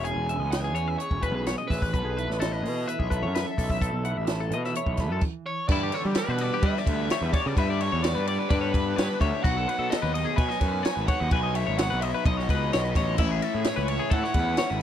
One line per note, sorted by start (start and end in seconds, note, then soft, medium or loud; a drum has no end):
0.00 0.13 E1 medium
0.00 1.68 E2 medium
0.00 0.29 G#4 medium
0.04 0.76 C#4 medium
0.04 0.28 G#4 medium
0.04 0.50 G#5 loud
0.04 closed hi-hat medium
0.16 0.37 E1 medium
0.29 1.00 G#4 medium
0.29 0.40 E5 medium
0.29 closed hi-hat medium
0.39 0.74 C#2 medium
0.39 0.63 D#5 medium
0.52 2.63 E3 medium
0.52 0.98 G#5 medium
0.52 snare loud
0.52 closed hi-hat medium
0.64 0.76 G#4 medium
0.74 0.96 E2 medium
0.74 0.88 C#5 medium
0.74 closed hi-hat medium
0.78 1.46 C#4 medium
0.88 1.01 E5 medium
0.98 1.68 G#4 medium
0.98 1.23 C#5 medium
0.98 closed hi-hat medium
1.11 1.32 E1 medium
1.11 kick medium
1.22 1.70 B2 medium
1.22 1.44 B4 medium
1.22 1.35 B4 medium
1.22 kick medium
1.22 closed hi-hat medium
1.32 1.54 B1 medium
1.32 1.46 G#4 medium
1.46 1.59 B3 medium
1.46 1.58 C#5 medium
1.46 snare loud
1.46 closed hi-hat medium
1.58 1.70 C#4 soft
1.58 1.70 D#5 medium
1.68 1.91 A1 medium
1.68 1.93 E2 medium
1.68 1.91 G#4 medium
1.68 2.41 B4 medium
1.68 1.82 E5 medium
1.68 kick medium
1.68 open hi-hat medium
1.72 snare soft
1.82 1.92 B4 medium
1.82 kick medium
1.93 2.04 B1 loud
1.93 2.64 B2 medium
1.93 2.39 A4 medium
1.93 2.05 B4 medium
1.93 kick medium
1.93 closed hi-hat medium
2.04 2.26 B1 medium
2.04 2.17 G#4 medium
2.17 2.86 E4 medium
2.17 2.40 B4 medium
2.17 closed hi-hat soft
2.28 2.64 A1 medium
2.28 snare soft
2.40 3.09 A4 medium
2.40 2.52 A4 medium
2.40 2.88 D#5 loud
2.40 snare loud
2.40 closed hi-hat medium
2.52 2.64 B4 medium
2.63 2.84 B2 medium
2.63 4.48 E3 medium
2.63 2.88 G#4 medium
2.63 open hi-hat medium
2.86 3.55 E4 medium
2.86 2.99 B4 medium
2.86 5.18 E5 loud
2.86 closed hi-hat medium
2.99 3.24 B1 medium
2.99 3.10 G#4 medium
2.99 kick medium
3.10 3.78 A4 medium
3.10 3.22 B4 medium
3.10 kick medium
3.10 closed hi-hat medium
3.22 3.44 F#2 medium
3.22 3.34 C#5 medium
3.34 3.78 F#2 medium
3.34 3.47 B4 medium
3.34 snare medium
3.34 closed hi-hat medium
3.47 3.57 A4 medium
3.57 3.90 B1 medium
3.57 3.78 E4 medium
3.57 3.70 A4 medium
3.57 kick medium
3.57 open hi-hat medium
3.70 3.81 E5 medium
3.70 kick medium
3.80 4.51 B2 medium
3.80 4.27 A4 medium
3.80 4.05 A4 medium
3.80 kick medium
3.80 closed hi-hat medium
3.93 4.14 B1 medium
4.04 4.75 E4 medium
4.04 4.18 F#5 medium
4.04 closed hi-hat medium
4.17 4.52 A1 medium
4.17 4.40 E5 medium
4.27 4.98 A4 medium
4.27 snare loud
4.27 closed hi-hat medium
4.40 4.52 A4 medium
4.50 4.72 B2 medium
4.50 7.08 E3 medium
4.50 closed hi-hat medium
4.54 4.64 D#5 medium
4.64 4.76 E5 medium
4.64 snare soft
4.75 5.20 E4 medium
4.75 5.01 C#5 medium
4.75 closed hi-hat medium
4.86 5.10 B1 medium
4.86 kick medium
4.97 5.20 A4 medium
4.97 5.11 B4 medium
4.97 kick medium
4.97 snare soft
4.97 closed hi-hat soft
5.10 5.21 F#2 medium
5.10 5.23 A4 medium
5.21 kick medium
5.21 crash medium
5.46 5.68 C#5 medium
5.68 5.90 G2 loud
5.68 6.62 G2 medium
5.68 6.16 D3 medium
5.68 5.93 G3 medium
5.68 5.92 B3 medium
5.68 5.92 D4 loud
5.68 5.82 E4 loud
5.68 5.90 G4 loud
5.68 5.93 D5 medium
5.68 kick medium
5.68 crash loud
5.83 5.95 G4 medium
5.91 6.15 G3 medium
5.91 6.16 B3 medium
5.91 6.17 D4 medium
5.91 6.17 G4 medium
5.91 6.07 A4 medium
5.91 6.00 C#5 medium
5.91 ride medium
6.05 6.15 G3 medium
6.05 6.29 G4 medium
6.15 6.62 G3 medium
6.15 6.63 B3 medium
6.15 6.62 D4 medium
6.15 6.63 G4 medium
6.15 6.65 B4 medium
6.15 snare loud
6.15 ride loud
6.29 6.49 B2 loud
6.29 6.41 B4 medium
6.38 6.52 D5 medium
6.38 ride medium
6.54 6.64 G4 medium
6.62 7.09 G2 loud
6.62 7.10 D3 medium
6.62 6.73 G3 medium
6.62 6.87 G3 loud
6.62 6.87 B3 medium
6.62 6.85 D4 medium
6.62 6.85 G4 loud
6.62 6.78 B4 medium
6.62 7.32 E5 medium
6.62 kick loud
6.62 ride loud
6.77 6.88 D5 medium
6.77 snare soft
6.86 7.08 D2 medium
6.86 7.07 G3 medium
6.86 7.09 B3 medium
6.86 7.09 D4 medium
6.86 7.09 G4 medium
6.86 7.11 B4 medium
6.86 kick medium
6.86 ride medium
7.08 7.34 G3 medium
7.08 7.34 B3 medium
7.08 7.33 D4 medium
7.08 7.32 G4 medium
7.08 7.23 C#5 medium
7.08 snare loud
7.08 ride loud
7.22 7.32 E2 medium
7.22 7.34 B4 medium
7.33 7.56 G3 medium
7.33 7.57 B3 medium
7.33 7.56 D4 medium
7.33 7.57 G4 medium
7.33 7.47 C#5 medium
7.33 7.39 D5 medium
7.33 kick medium
7.33 ride medium
7.46 7.56 C#3 loud
7.46 7.57 D5 medium
7.57 7.88 G2 loud
7.57 8.03 G2 medium
7.57 8.03 D3 loud
7.57 7.82 G3 loud
7.57 7.81 B3 medium
7.57 7.80 D4 loud
7.57 7.80 G4 loud
7.57 7.69 B4 medium
7.57 7.82 E5 loud
7.57 kick medium
7.57 ride medium
7.70 7.81 D5 medium
7.81 8.03 G3 medium
7.81 8.04 B3 medium
7.81 8.04 D4 medium
7.81 8.05 G4 medium
7.81 7.91 C#5 medium
7.81 8.03 C#5 medium
7.81 ride medium
7.92 8.14 E2 medium
7.92 8.15 C#5 medium
8.04 8.50 G3 medium
8.04 8.52 B3 medium
8.04 8.51 D4 medium
8.04 8.51 G4 medium
8.04 8.47 D5 medium
8.04 snare loud
8.04 ride loud
8.15 8.37 G2 loud
8.15 8.27 B4 medium
8.27 8.39 D5 medium
8.27 ride medium
8.39 8.50 B4 medium
8.49 8.97 G2 medium
8.49 8.93 G2 loud
8.49 8.97 D3 loud
8.49 8.75 G3 loud
8.49 8.76 B3 loud
8.49 8.74 D4 loud
8.49 8.73 G4 loud
8.49 9.22 B4 loud
8.49 8.61 D5 medium
8.49 kick loud
8.49 ride loud
8.61 8.73 C#5 medium
8.73 8.95 G3 medium
8.73 8.97 B3 medium
8.73 8.97 D4 medium
8.73 8.98 G4 medium
8.73 8.96 B4 medium
8.73 kick medium
8.73 ride medium
8.96 9.08 G2 loud
8.96 9.21 G3 medium
8.96 9.21 B3 medium
8.96 9.20 D4 medium
8.96 9.18 G4 medium
8.96 9.08 C#5 medium
8.96 snare loud
8.96 ride loud
9.08 9.20 B4 medium
9.20 9.31 D2 medium
9.20 9.43 G3 medium
9.20 9.44 B3 medium
9.20 9.42 D4 medium
9.20 9.42 G4 medium
9.20 9.44 C#5 medium
9.20 9.42 E5 medium
9.20 kick medium
9.20 ride medium
9.43 9.65 B1 loud
9.43 9.91 B2 loud
9.43 9.69 F#3 loud
9.43 9.68 B3 loud
9.43 9.67 D#4 loud
9.43 9.55 F#4 medium
9.43 9.87 F#5 loud
9.43 kick medium
9.43 crash medium
9.57 9.68 A4 medium
9.67 9.91 F#3 medium
9.67 9.92 B3 medium
9.67 9.92 D#4 medium
9.67 9.79 B4 medium
9.67 ride medium
9.79 9.90 B2 medium
9.79 10.02 A4 medium
9.91 10.36 B2 medium
9.91 10.37 F#3 medium
9.91 10.37 B3 medium
9.91 10.38 D#4 medium
9.91 10.37 D#5 medium
9.91 snare loud
9.91 ride loud
10.02 10.24 D#2 loud
10.02 10.14 B4 medium
10.14 10.26 D#5 medium
10.14 ride medium
10.25 10.37 G#4 medium
10.36 10.84 B2 medium
10.36 10.48 B2 medium
10.36 10.61 F#3 loud
10.36 10.61 B3 loud
10.36 10.60 D#4 loud
10.36 10.49 B4 medium
10.36 11.06 G#5 loud
10.36 kick loud
10.36 ride loud
10.49 10.60 D#5 medium
10.49 snare soft
10.60 10.82 F#2 medium
10.60 10.84 F#3 medium
10.60 10.85 B3 medium
10.60 10.85 D#4 medium
10.60 10.83 B4 medium
10.60 kick medium
10.60 ride medium
10.83 11.30 B2 medium
10.83 11.08 F#3 medium
10.83 11.07 B3 medium
10.83 11.06 D#4 loud
10.83 10.95 C#5 medium
10.83 snare loud
10.83 ride loud
10.95 11.07 G#1 medium
10.95 11.07 B4 medium
11.07 11.31 F#3 medium
11.07 11.32 B3 medium
11.07 11.32 D#4 medium
11.07 11.20 C#5 medium
11.07 11.31 F#5 medium
11.07 kick medium
11.07 ride medium
11.20 11.31 D#2 loud
11.20 11.31 D#5 medium
11.31 11.63 B1 loud
11.31 11.76 B2 medium
11.31 11.56 F#3 loud
11.31 11.55 B3 medium
11.31 11.54 D#4 loud
11.31 11.43 B4 loud
11.31 11.56 G#5 loud
11.31 kick loud
11.31 ride medium
11.43 11.55 D#5 medium
11.55 11.77 F#3 medium
11.55 11.78 B3 medium
11.55 11.78 D#4 medium
11.55 11.65 C#5 medium
11.55 11.78 E5 medium
11.55 ride medium
11.67 11.89 G#1 medium
11.67 11.90 C#5 medium
11.77 12.23 B2 medium
11.77 12.23 F#3 medium
11.77 12.24 B3 medium
11.77 12.25 D#4 medium
11.77 12.00 F#5 loud
11.77 snare loud
11.77 ride loud
11.90 12.12 B1 medium
11.90 12.03 B4 medium
12.01 12.14 D#5 medium
12.01 12.25 E5 medium
12.01 ride medium
12.15 12.25 B4 medium
12.24 12.46 B1 loud
12.24 12.71 B2 loud
12.24 12.48 F#3 medium
12.24 12.47 B3 loud
12.24 12.46 D#4 loud
12.24 12.37 D#5 medium
12.24 12.96 D#5 loud
12.24 kick loud
12.24 ride loud
12.37 12.48 C#5 medium
12.37 snare soft
12.47 12.70 C#2 medium
12.47 12.71 F#3 medium
12.47 12.72 B3 medium
12.47 12.72 D#4 medium
12.47 12.72 B4 medium
12.47 kick medium
12.47 ride medium
12.72 12.94 B1 medium
12.72 13.17 B2 medium
12.72 12.96 F#3 medium
12.72 12.95 B3 medium
12.72 12.94 D#4 medium
12.72 12.85 C#5 medium
12.72 snare loud
12.72 ride loud
12.85 12.95 B4 medium
12.95 13.16 A1 medium
12.95 13.18 F#3 medium
12.95 13.17 B3 medium
12.95 13.17 D#4 medium
12.95 13.18 C#5 medium
12.95 13.20 D#5 medium
12.95 kick medium
12.95 ride medium
13.18 13.40 A1 loud
13.18 14.12 A2 loud
13.18 13.65 E3 loud
13.18 13.43 A3 medium
13.18 13.42 C#4 loud
13.18 13.30 E4 medium
13.18 13.41 E4 loud
13.18 13.67 E5 loud
13.18 kick loud
13.18 crash loud
13.32 13.42 G#4 medium
13.41 13.65 A3 medium
13.41 13.66 C#4 medium
13.41 13.66 E4 medium
13.41 13.55 A4 medium
13.41 ride medium
13.55 13.65 A2 medium
13.55 13.77 G#4 medium
13.64 14.11 E3 medium
13.64 14.13 A3 medium
13.64 14.12 C#4 medium
13.64 14.13 E4 loud
13.64 14.14 C#5 loud
13.64 snare loud
13.64 ride loud
13.76 13.98 C#2 medium
13.76 13.89 B4 medium
13.88 14.00 C#5 medium
13.88 ride medium
13.99 14.11 G#4 medium
14.10 14.22 A2 loud
14.10 14.59 A2 medium
14.10 14.58 E3 loud
14.10 14.38 A3 medium
14.10 14.37 C#4 loud
14.10 14.36 E4 loud
14.10 14.23 A4 medium
14.10 14.79 F#5 loud
14.10 kick loud
14.10 ride loud
14.23 14.34 C#5 medium
14.23 snare soft
14.34 14.56 E2 medium
14.34 14.59 C#4 medium
14.34 14.60 E4 medium
14.34 14.58 B4 medium
14.34 kick medium
14.34 ride medium
14.39 14.60 A3 medium
14.57 14.82 E3 medium
14.57 14.82 A3 medium
14.57 14.82 C#4 medium
14.57 14.70 C#5 medium
14.57 snare loud
14.57 ride loud
14.61 14.81 E4 medium
14.70 14.81 G#1 medium
14.70 14.82 B4 medium